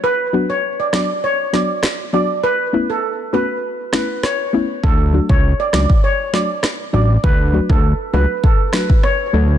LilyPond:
<<
  \new Staff \with { instrumentName = "Steel pan" } { \time 4/4 \key d \major \tempo 4 = 100 b'8 r16 cis''16 r16 d''16 d''16 r16 cis''16 r16 d''16 r8. d''16 r16 | b'16 r8 a'8 r16 b'8 r8 b'16 r16 cis''8. r16 | a'8 r16 cis''16 r16 d''16 d''16 r16 cis''16 r16 d''16 r8. d''16 r16 | b'16 r8 a'8 r16 b'8 a'16 r16 b'16 r16 cis''8. r16 | }
  \new Staff \with { instrumentName = "Synth pluck" } { \time 4/4 \key d \major r8 <fis b d' fis'>8 r8 <fis b d' fis'>8 r8 <fis b d' fis'>8 r8 <fis b d' fis'>8 | r8 <a b cis' e'>8 r8 <a b cis' fis'>8 r8 <a b cis' e'>8 r8 <a b cis' e'>8 | r8 <fis a d' fis'>8 r8 <fis a d' fis'>8 r8 <fis a d' fis'>8 r8 <fis a d' fis'>8 | r8 <fis a d' fis'>8 r8 <fis a d' fis'>8 r8 <fis a d' fis'>8 r8 <fis a d' a'>8 | }
  \new Staff \with { instrumentName = "Analog synth bass" } { \clef bass \time 4/4 \key d \major r1 | r1 | d,8. cis,8 r16 cis,16 r4. r16 a,,8 | d,8. d,8 r16 cis,16 r4. r16 d,8 | }
  \new DrumStaff \with { instrumentName = "Drums" } \drummode { \time 4/4 r4 r8 <ss sn>8 r8 sn8 <ss sn>4 | r4 r4 r8 <ss sn>8 <ss sn>4 | bd8. bd16 r8 <ss sn>16 bd16 r8 sn8 <ss sn>4 | bd8. bd16 r4 bd8 <ss sn>16 bd16 ss4 | }
>>